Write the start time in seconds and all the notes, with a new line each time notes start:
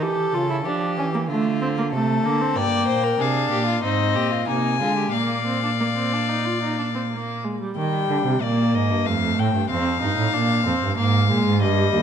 0.02 E3 G4 A4
0.34 C#3 F4
0.50 E4
0.65 F3 D4 G4
0.97 E3 C#4
1.14 A#3
1.29 D3 A3 F4
1.62 C4
1.78 A#3
1.92 C3 A3 A4
2.24 D3 A#3
2.41 C4
2.56 G2 A#3 D5 G5
2.88 A#2 C5
3.04 A#4
3.19 C3 D4 G#4 F5
3.51 A#2 G4
3.66 F4
3.83 G#2 C4 D#4 D#5
4.15 A#2 G4
4.31 F4
4.48 C3 A#3 D#4 G#5
4.80 D3 G#3 F4
4.97 G4
5.13 A#2 A#3 D5 F5
5.47 C4
5.63 D4
5.80 A#3
5.96 C4
6.13 D4
6.29 D#4
6.46 F4
6.63 D#4
6.79 D4
6.95 C4
7.11 A#3
7.44 G#3
7.60 G3
7.76 D#3 G3 G5
8.09 D3
8.26 C3
8.42 A#2 A#3 D5
8.74 G#2 D#5
8.90 G2
9.06 F2 A3 F5
9.38 A2 G5
9.54 G2
9.70 F2 C4 F5
10.02 G2 D#4
10.18 A2
10.33 A#2 D4
10.65 F2 C4
10.82 G2
10.97 G#2 A#3 F5
11.29 A#2 G#3
11.46 G#2
11.61 G2 G3 D#5
11.93 D#2